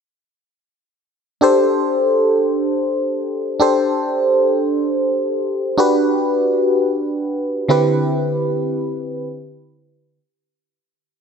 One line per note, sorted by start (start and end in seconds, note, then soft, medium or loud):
1.41 3.56 D4 medium
1.41 3.56 G4 medium
1.41 3.57 A4 medium
1.41 3.57 C5 medium
3.60 5.74 D4 medium
3.60 5.75 G4 medium
3.60 5.75 A4 medium
3.60 5.75 C5 medium
5.78 7.65 D4 medium
5.78 7.66 F#4 medium
5.78 7.66 G4 medium
5.78 7.66 B4 medium
7.69 9.83 D3 medium
7.69 9.84 C4 medium
7.69 9.84 E4 medium
7.69 9.84 G4 medium
7.69 9.84 B4 medium